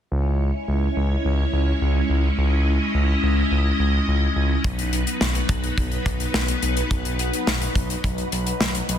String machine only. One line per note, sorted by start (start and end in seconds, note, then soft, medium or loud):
0.12 4.60 G#3 medium
0.12 4.60 C#4 medium
0.12 4.60 E4 medium
0.12 2.36 C#5 medium
2.38 4.62 D#5 medium
4.64 8.99 F#3 medium
4.64 8.99 B3 medium
4.64 8.99 D#4 medium
4.64 8.99 B4 medium